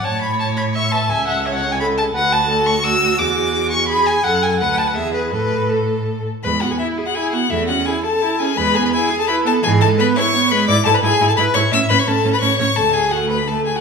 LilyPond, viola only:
\new Staff \with { instrumentName = "Viola" } { \time 3/4 \key a \major \tempo 4 = 170 cis''2 e''4 | e''4 cis''4 a'4 | b'4 a'4 fis'4~ | fis'2 gis'4 |
a'4 b'4 gis'4 | a'2~ a'8 r8 | \key e \major gis8 b8 e'8 gis'8 e'8 b8 | a8 cis'8 e'8 a'8 e'8 cis'8 |
gis8 b8 e'8 gis'8 e'8 b8 | e8 gis8 b8 e'8 b8 gis8 | \key a \major e'8 e'8 e'8 e'8 e'8 e'8 | cis'8 cis'8 cis'8 cis'8 cis'8 cis'8 |
a4 a4 a4 | }